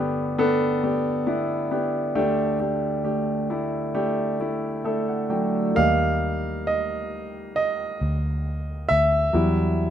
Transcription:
Already playing: grand piano G1 G2 B3 D4 G4 A4
0.38 grand piano B3 D4 A4
0.84 grand piano B3 D4 G4
1.27 grand piano B3 D4 E4
1.71 grand piano B3 D4 G4
2.15 grand piano D2 D3 A3 D4 G4
2.60 grand piano A3 D4 G4
3.04 grand piano A3 D4 G4
3.50 grand piano A3 D4 E4
3.94 grand piano A3 D4 G4
4.40 grand piano A3 D4 E4 D5
4.84 grand piano A3 D4 A4 E5
5.08 grand piano F#5
5.29 grand piano F#3 A3 D4 G5
5.75 fingered electric bass D#2, grand piano G3 A#3 D#4 F5
6.67 grand piano D#5
7.56 grand piano D#5
8.01 fingered electric bass D2
8.89 fingered electric bass D2, grand piano E5
9.33 fingered electric bass E2, grand piano F#3 G3 E4

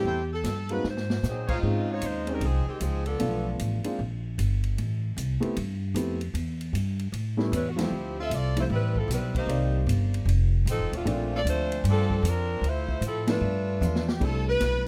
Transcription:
Already playing: saxophone section G4
0.04 upright bass E2, trumpet section E4 A4 C5 G5
0.33 saxophone section A4
0.44 upright bass G2, snare, hi-hat pedal, ride
0.69 upright piano G#3 A#3 C4 D#4 F#4, saxophone section B4, ride
0.84 upright bass G#2, saxophone section C5, snare
0.97 snare
1.10 snare
1.23 upright bass A#2, saxophone section G#4, snare, hi-hat pedal
1.27 saxophone section F#3 C4 D#4
1.48 saxophone section G#3 C4 F4, trumpet section D#4 C5 C#5 F5, kick, crash
1.52 saxophone section D#4
1.63 upright bass G#2, upright piano G#3 C4 C#4 D#4 F4
1.92 saxophone section G#3 D#4 F4 C#5
2.02 upright bass D#2, saxophone section G#3 F4 C5, hi-hat pedal, ride
2.06 saxophone section D#4
2.27 upright piano G#3 C4 C#4 D#4 G#4, saxophone section D#4, ride
2.31 saxophone section G3 C4 A#4
2.41 upright bass C2, saxophone section F3 C4 D#4 G#4, ride
2.67 saxophone section D#3 G#3 C4 G4, muted upright bass stroke
2.80 upright bass C#2, saxophone section F3 C4 D#4 G#4, hi-hat pedal, ride
3.06 saxophone section F3 B3 D4 A4, ride
3.19 upright bass B1, upright piano F3 A3 B3 D4 F4, ride
3.59 upright bass A1, hi-hat pedal, ride
3.84 upright piano G#3 A#3 C4 D4 F4, muted upright bass stroke, ride
3.99 upright bass A#1
4.38 upright bass G1, hi-hat pedal, ride
4.64 ride
4.78 upright bass A1, ride
5.16 upright bass C2, hi-hat pedal, ride
5.40 upright piano A3 B3 C4 E4 G4, muted upright bass stroke, ride
5.57 upright bass G2, ride
5.94 upright bass F2, upright piano A3 B3 C4 E4 G4, hi-hat pedal, ride
6.21 ride
6.34 upright bass E2, ride
6.61 ride
6.73 upright bass G2, hi-hat pedal, ride
6.99 ride
7.12 upright bass A2, ride
7.37 upright piano G3 A3 B3 C#4 E4, snare
7.52 upright bass E2, saxophone section G3 C#4 E4 B4, hi-hat pedal, ride
7.70 saxophone section F#4
7.76 upright piano F3 G3 A3 C4 E4, saxophone section F3 C4, snare, ride
7.80 saxophone section E4 G4
7.91 upright bass D2
8.20 saxophone section C4 F4 A4 E5
8.30 upright bass C2, hi-hat pedal, ride
8.34 saxophone section C4 F4 A4 D5
8.55 upright piano F3 G3 A3 C4 E4, saxophone section E4, ride
8.60 saxophone section A3 F4 C5
8.70 upright bass A1, saxophone section G3 C4 E4 B4
8.96 saxophone section F3 C4 E4 A4, kick
9.08 upright bass B1, saxophone section G3, snare, hi-hat pedal, ride
9.12 saxophone section C4 E4 B4
9.35 saxophone section A#3 D#4 G4 C5, kick, ride
9.46 upright bass C2, upright piano D#3 G3 A#3 C4 D5, ride
9.87 upright bass G1, hi-hat pedal, ride
10.14 ride
10.25 upright bass F1, ride
10.65 upright bass A1, saxophone section A4, hi-hat pedal, ride
10.70 saxophone section F3 C4 D#4
10.78 upright bass F1
10.92 upright bass D#1, saxophone section A3 D4, ride
10.96 saxophone section C4 F4
11.05 upright bass A#1, upright piano A#2 F3 A3 C4 D4, ride
11.35 saxophone section C4 F4 A4 D5
11.45 upright bass D2, saxophone section A3 D4 F4 C5, hi-hat pedal, ride
11.72 ride
11.84 upright bass G2, ride
11.89 saxophone section F3 C4 D4 A4
12.10 kick
12.23 upright bass F2, hi-hat pedal, ride
12.27 saxophone section F3 C4 D4 A#4
12.61 upright bass D2, ride
12.67 saxophone section A3 E4 F4 C5
12.89 kick
13.01 upright bass A2, hi-hat pedal, ride
13.05 saxophone section F3 C4 E4 A4
13.27 upright piano F3 A3 B3 D4 E4, saxophone section A3 D4 F4 B4, snare, ride
13.41 upright bass G2
13.81 upright bass E2, saxophone section F4, hi-hat pedal, high tom
13.95 snare
14.08 saxophone section G4, snare
14.20 upright bass C2, upright piano G3 A3 C4 D4 E4, kick, crash
14.24 saxophone section A4
14.49 saxophone section B4
14.60 upright bass B1, snare, hi-hat pedal, ride

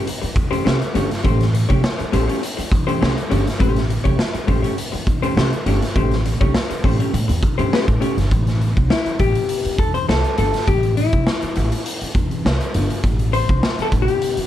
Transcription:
0.06 muted hollow-body jazz guitar stroke, closed hi-hat
0.22 muted hollow-body jazz guitar stroke, muted upright bass stroke, closed hi-hat
0.36 upright bass E2, kick, closed hi-hat
0.51 hollow-body jazz guitar A3 C#4 G4 C5, closed hi-hat
0.64 upright bass C2, hollow-body jazz guitar A3 C#4 G4 C5, snare
0.80 muted hollow-body jazz guitar stroke, closed hi-hat
0.94 upright bass G1, hollow-body jazz guitar A3 C#4 G4 C#5, closed hi-hat
1.10 muted hollow-body jazz guitar stroke, snare, closed hi-hat
1.24 upright bass A1, hollow-body jazz guitar A3 C#4 G4 C5, kick, closed hi-hat
1.41 snare, closed hi-hat
1.53 muted hollow-body jazz guitar stroke, closed hi-hat
1.69 upright bass C2, hollow-body jazz guitar A3 C#4 G4 C#5, kick, closed hi-hat
1.83 muted hollow-body jazz guitar stroke, snare
1.99 muted hollow-body jazz guitar stroke, muted upright bass stroke, closed hi-hat
2.12 upright bass A1, hollow-body jazz guitar A3 C#4 G4 C5, closed hi-hat
2.28 hollow-body jazz guitar A3 C#4 G4 C#5, closed hi-hat
2.42 muted hollow-body jazz guitar stroke, closed hi-hat
2.57 muted hollow-body jazz guitar stroke, muted upright bass stroke, closed hi-hat
2.72 upright bass E2, kick, closed hi-hat
2.87 hollow-body jazz guitar A3 C#4 G4 C5, closed hi-hat
3.01 upright bass C2, hollow-body jazz guitar A3 C#4 G4 C5, snare
3.16 muted hollow-body jazz guitar stroke, closed hi-hat
3.29 upright bass G1, hollow-body jazz guitar A3 C#4 G4 C#5, closed hi-hat
3.45 muted hollow-body jazz guitar stroke, snare, closed hi-hat
3.59 upright bass A1, hollow-body jazz guitar A3 C#4 G4 C5, kick, closed hi-hat
3.76 snare, closed hi-hat
3.89 muted hollow-body jazz guitar stroke, closed hi-hat
4.04 upright bass C2, hollow-body jazz guitar A3 C#4 G4 C#5, kick, closed hi-hat
4.18 muted hollow-body jazz guitar stroke, snare
4.34 muted hollow-body jazz guitar stroke, muted upright bass stroke, closed hi-hat
4.47 upright bass A1, hollow-body jazz guitar A3 C#4 G4 C5, kick, closed hi-hat
4.62 hollow-body jazz guitar A3 C#4 G4 C#5, closed hi-hat
4.76 muted hollow-body jazz guitar stroke, closed hi-hat
4.92 muted hollow-body jazz guitar stroke, muted upright bass stroke, closed hi-hat
5.07 upright bass E2, kick, closed hi-hat
5.22 hollow-body jazz guitar A3 C#4 G4 C5, closed hi-hat
5.36 upright bass C2, hollow-body jazz guitar A3 C#4 G4 C5, snare
5.52 muted hollow-body jazz guitar stroke, closed hi-hat
5.66 upright bass G1, hollow-body jazz guitar A3 C#4 G4 C#5, closed hi-hat
5.82 muted hollow-body jazz guitar stroke, snare, closed hi-hat
5.96 upright bass A1, hollow-body jazz guitar A3 C#4 G4 C5, kick, closed hi-hat
6.11 snare, closed hi-hat
6.25 muted hollow-body jazz guitar stroke, closed hi-hat
6.41 upright bass C2, hollow-body jazz guitar A3 C#4 G4 C#5, kick, closed hi-hat
6.54 muted hollow-body jazz guitar stroke, snare
6.70 muted hollow-body jazz guitar stroke, muted upright bass stroke, closed hi-hat
6.84 upright bass A1, hollow-body jazz guitar A3 C#4 G4 C5, kick, open hi-hat
6.99 hollow-body jazz guitar A3 C#4 G4 C#5, closed hi-hat
7.13 upright bass A2, muted hollow-body jazz guitar stroke, closed hi-hat
7.28 upright bass E2, muted hollow-body jazz guitar stroke, closed hi-hat
7.43 kick, closed hi-hat
7.58 upright bass G2, hollow-body jazz guitar A3 C#4 G4 C5, closed hi-hat
7.72 hollow-body jazz guitar A3 C#4 G4 C5, snare
7.87 upright bass A2, muted hollow-body jazz guitar stroke, kick, closed hi-hat
8.00 hollow-body jazz guitar A3 C#4 G4 C#5, closed hi-hat
8.17 upright bass G1, muted hollow-body jazz guitar stroke, snare, closed hi-hat
8.31 upright bass A1, kick, closed hi-hat
8.47 snare, closed hi-hat
8.61 closed hi-hat
8.77 upright bass C2, kick, closed hi-hat
8.90 hollow-body jazz guitar E4, snare
9.06 muted upright bass stroke, closed hi-hat
9.19 upright bass A1, hollow-body jazz guitar G4, kick, closed hi-hat
9.35 closed hi-hat
9.49 closed hi-hat
9.65 muted upright bass stroke, closed hi-hat
9.78 upright bass E2, hollow-body jazz guitar A4, kick, closed hi-hat
9.94 hollow-body jazz guitar C5, closed hi-hat
10.09 upright bass C2, hollow-body jazz guitar A4, snare
10.24 closed hi-hat
10.38 upright bass G1, hollow-body jazz guitar A4, closed hi-hat
10.54 snare, closed hi-hat
10.67 upright bass A1, hollow-body jazz guitar G4, kick, closed hi-hat
10.83 closed hi-hat
10.97 hollow-body jazz guitar E4, closed hi-hat
11.12 upright bass C2, kick, closed hi-hat
11.27 snare
11.42 muted upright bass stroke, closed hi-hat
11.56 upright bass A1, closed hi-hat
11.72 closed hi-hat
11.86 closed hi-hat
12.01 muted upright bass stroke, closed hi-hat
12.15 upright bass E2, kick, closed hi-hat
12.31 closed hi-hat
12.45 upright bass C2, snare
12.61 closed hi-hat
12.74 upright bass G1, closed hi-hat
12.90 closed hi-hat
13.04 upright bass A1, kick, closed hi-hat
13.19 closed hi-hat
13.33 hollow-body jazz guitar C5, closed hi-hat
13.49 upright bass C2, kick, closed hi-hat
13.63 snare
13.79 hollow-body jazz guitar A4, muted upright bass stroke, closed hi-hat
13.92 upright bass A1, kick, closed hi-hat
14.02 hollow-body jazz guitar G4
14.08 closed hi-hat
14.22 closed hi-hat
14.37 muted upright bass stroke, closed hi-hat

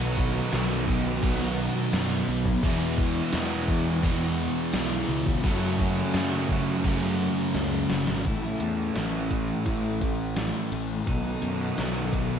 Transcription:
Already playing: picked electric bass B1, distorted electric guitar B2 F#3 B3, overdriven electric guitar B2 D#3 F#3 B3 D#4 A4
0.18 kick
0.52 picked electric bass B1, distorted electric guitar B2 F#3 B3, snare, tambourine, crash
0.87 distorted electric guitar F#3 B3, kick
1.22 distorted electric guitar B2 F#3 B3, kick, crash
1.75 snare
1.92 picked electric bass F#2, distorted electric guitar B2 F#3 B3, snare, tambourine, crash
2.28 picked electric bass B1
2.46 kick
2.62 distorted electric guitar E2 B2 E3, picked electric bass E2, overdriven electric guitar E3 G#3 B3 E4 G#4, kick, crash
2.98 kick
3.32 distorted electric guitar E2 B2 E3, picked electric bass E2, snare, tambourine, crash
3.68 distorted electric guitar B2 E3, kick
4.03 distorted electric guitar E2 B2 E3, kick, crash
4.73 picked electric bass B1, distorted electric guitar E2 B2 E3, snare, tambourine, crash
5.09 picked electric bass C#2
5.26 kick, snare
5.43 overdriven electric guitar F#2 C#3 F#3 A3 C#4 A4, distorted electric guitar F#2 C#3 F#3, picked electric bass F#2, kick, crash
5.79 kick
6.14 distorted electric guitar F#2 C#3 F#3, picked electric bass F#2, snare, tambourine, crash
6.49 distorted electric guitar C#3 F#3, kick
6.84 distorted electric guitar F#2 C#3 F#3, kick, crash
7.54 picked electric bass C#2, distorted electric guitar F#2 C#3 F#3, snare, tambourine
7.90 picked electric bass F#1, snare
8.07 picked electric bass G#1, snare
8.23 picked electric bass A1, overdriven electric guitar A2 E3 A3 C#4 E4 A4, distorted electric guitar A2 E3 A3, kick, closed hi-hat
8.43 snare
8.60 picked electric bass E2, distorted electric guitar E3 A3, closed hi-hat
8.96 picked electric bass A1, distorted electric guitar A2 E3 A3, snare, closed hi-hat
9.30 distorted electric guitar E3 A3, kick, closed hi-hat
9.65 picked electric bass A1, distorted electric guitar A2 E3 A3, kick, closed hi-hat
10.01 distorted electric guitar E3 A3, kick, closed hi-hat
10.36 distorted electric guitar A2 E3 A3, snare, closed hi-hat
10.71 picked electric bass A1, distorted electric guitar E3 A3, closed hi-hat
11.06 picked electric bass B1, overdriven electric guitar B2 D#3 F#3 B3 D#4 A4, distorted electric guitar B2 F#3 B3, kick, closed hi-hat
11.42 picked electric bass F#2, distorted electric guitar F#3 B3, closed hi-hat
11.77 picked electric bass B1, distorted electric guitar B2 F#3 B3, snare, closed hi-hat
12.13 distorted electric guitar F#3 B3, kick, snare, closed hi-hat

